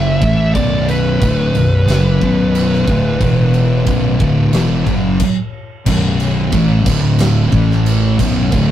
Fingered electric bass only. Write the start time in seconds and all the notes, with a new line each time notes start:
Already playing: F#1
0.21 A1
0.55 B0
1.22 D1
1.55 B0
1.87 F#1
2.22 B0
2.87 D1
3.21 E1
3.87 B0
4.20 D1
4.52 E1
4.87 F#1
5.86 B0
6.53 A1
6.86 D1
7.52 A1
8.19 B0
8.52 D1